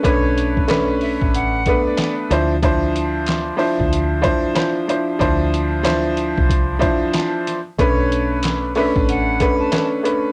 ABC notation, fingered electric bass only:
X:1
M:4/4
L:1/16
Q:"Swing 16ths" 1/4=93
K:Bm
V:1 name="Fingered electric bass" clef=bass
B,,,6- B,,, A,,,4 z3 D,,2- | D,,6- D,, D,,4 z4 z | D,,6- D,, =C,,4 z4 z | B,,,6- B,,, A,,,4 z4 z |]